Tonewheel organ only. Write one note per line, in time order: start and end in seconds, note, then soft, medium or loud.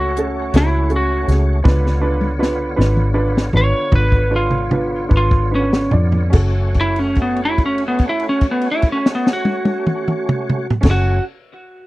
0.00 1.60 A3 medium
0.00 1.61 C#4 medium
0.00 1.60 F#4 medium
0.00 1.60 C#5 medium
1.63 6.29 D3 medium
1.63 6.29 B3 medium
1.63 6.29 F4 medium
1.63 6.29 C#5 medium
6.30 10.67 A3 medium
6.30 10.67 C#4 medium
6.30 10.68 F#4 medium
6.30 10.67 C#5 medium
10.81 11.19 A3 medium
10.81 11.19 C#4 medium
10.81 11.19 F#4 medium
10.81 11.19 C#5 medium